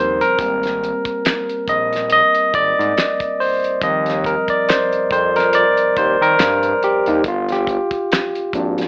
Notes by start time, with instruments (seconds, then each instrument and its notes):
Already playing: analog synth bass D#2, tine electric piano C#3 F3 G3 C4 A#4 C5
0.21 tine electric piano A#4, closed hi-hat
0.39 analog synth bass G#1, tine electric piano G3 A#3 C4, kick, closed hi-hat
0.63 snare, closed hi-hat
0.84 closed hi-hat
1.05 kick, closed hi-hat
1.25 snare, clap, closed hi-hat
1.49 closed hi-hat
1.68 analog synth bass A#1, tine electric piano D#5, kick, closed hi-hat
1.93 snare, closed hi-hat
2.10 tine electric piano D#5, closed hi-hat
2.35 closed hi-hat
2.54 analog synth bass G#1, tine electric piano D5, kick, closed hi-hat
2.79 analog synth bass G#2, closed hi-hat
2.97 snare, clap, closed hi-hat
3.20 kick, closed hi-hat
3.40 tine electric piano C5, open hi-hat
3.64 closed hi-hat
3.82 analog synth bass D#2, tine electric piano F3 G3 C4 D#5, kick, closed hi-hat
4.06 snare, closed hi-hat
4.24 tine electric piano A#4, kick, closed hi-hat
4.48 tine electric piano D5, kick, closed hi-hat
4.69 tine electric piano C5, snare, clap, closed hi-hat
4.92 closed hi-hat
5.11 analog synth bass F2, tine electric piano C5, kick, closed hi-hat
5.36 tine electric piano A#4, snare, closed hi-hat
5.53 tine electric piano D5, closed hi-hat
5.77 closed hi-hat
5.96 analog synth bass D#2, tine electric piano C5, kick, closed hi-hat
6.21 analog synth bass D#3, tine electric piano A#4, closed hi-hat
6.39 analog synth bass G2, snare, clap, closed hi-hat
6.63 closed hi-hat
6.83 tine electric piano G4, closed hi-hat
7.06 analog synth bass D#2, tine electric piano D#4, closed hi-hat
7.24 analog synth bass G1, tine electric piano F4, kick, closed hi-hat
7.49 tine electric piano G4, snare, closed hi-hat
7.67 kick, closed hi-hat
7.91 kick, closed hi-hat
8.12 snare, clap, closed hi-hat
8.35 closed hi-hat
8.53 analog synth bass G#1, tine electric piano F3 A#3 D4, kick, closed hi-hat
8.78 snare, closed hi-hat